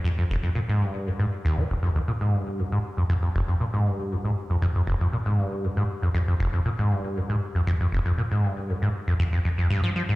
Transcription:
X:1
M:4/4
L:1/16
Q:1/4=118
K:Fm
V:1 name="Acid bass" clef=bass
F,, F,, F,,, F,, B,, A,, G,,2 F,, A,, z E,, F, F,,, F,, E,, | B,, A,, G,,2 F,, A,, z F,, F,, F,, F,,, F,, B,, A,, G,,2 | F,, A,, z F,, F,, F,, F,,, F,, B,, A,, G,,2 F,, A,, z F,, | F,, F,, F,,, F,, B,, A,, G,,2 F,, A,, z F,, F,, F,, F,,, F,, |
B,, A,, G,,2 F,, A,, z F,, F,, F,, F,, F,, G,, F, F, A,, |]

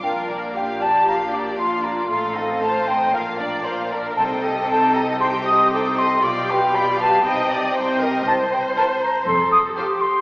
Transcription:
X:1
M:4/4
L:1/8
Q:1/4=117
K:Bb
V:1 name="Flute"
g f g a b d' c' b | c' f a g f3 z | a g a b c' e' d' c' | d' g =b a g3 z |
a g a b c' e' d' c' |]
V:2 name="Violin section"
f d f d f d f d | f e f e f d f d | g e g e g e g e | g f g f g e g e |
z2 c2 z2 c2 |]
V:3 name="Viola section"
B2 G4 F2 | A2 c2 B d c B | A4 G2 A2 | G4 e d c B |
c4 A2 G2 |]
V:4 name="Violin section"
[DF] [B,D] [DF] [B,D] [DF] [B,D] [DF] [B,D] | [A,F] [CE] [A,F] [CE] [B,F] [DB] [B,F] [DB] | [Ec] [Ge] [Ec] [Ge] [Ec] [Ge] [Ec] [Ge] | [Fd] [G=B] [Fd] [GB] [Ec] [Ge] [Ec] [Ge] |
z2 [=EB]2 z2 [FA]2 |]
V:5 name="Cello section" clef=bass
B,,8 | A,,4 B,,4 | C,8 | =B,,4 C,4 |
C,2 z2 F,,2 z2 |]
V:6 name="Double bass section" clef=bass
B,,,8 | A,,,4 B,,,4 | C,,8 | =B,,,4 C,,4 |
C,,2 z2 F,,,2 z2 |]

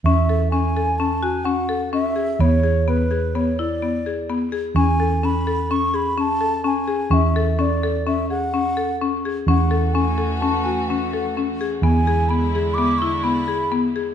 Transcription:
X:1
M:5/4
L:1/8
Q:1/4=127
K:F#m
V:1 name="Flute"
e2 g2 a g f2 e2 | c2 B2 c d3 z2 | g2 b2 c' b a2 g2 | e2 d2 e f3 z2 |
f2 g2 a g f2 z2 | g2 b2 d' c' b2 z2 |]
V:2 name="Marimba"
C A C A C F C A C G | B, G B, G B, E B, G B, G | C A C A C G C A C G | C A C A C G C A C G |
C A C A C F C A C G | B, G B, G B, E B, G B, G |]
V:3 name="String section" clef=bass
z8 z2 | z8 z2 | z8 z2 | z8 z2 |
[E,A,F]8- [E,A,F]2 | [D,G,E]8- [D,G,E]2 |]
V:4 name="Picked electric bass" clef=bass
E,,8- E,,2 | E,,8- E,,2 | E,,8- E,,2 | E,,8- E,,2 |
E,,8- E,,2 | E,,8- E,,2 |]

